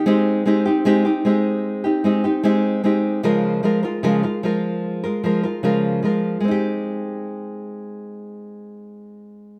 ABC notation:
X:1
M:4/4
L:1/16
Q:1/4=75
K:Ab
V:1 name="Nylon-string guitar"
[A,CEG]2 [A,CEG] [CEG] [A,CEG] [CEG] [A,CEG]3 [CEG] [A,CEG] [CEG] [A,CEG]2 [A,CEG]2 | [D,F,A,FB]2 [F,A,FB] [A,FB] [D,F,A,FB] [A,FB] [F,A,FB]3 [A,FB] [F,A,FB] [A,FB] [D,F,A,FB]2 [F,A,FB]2 | [A,CEG]16 |]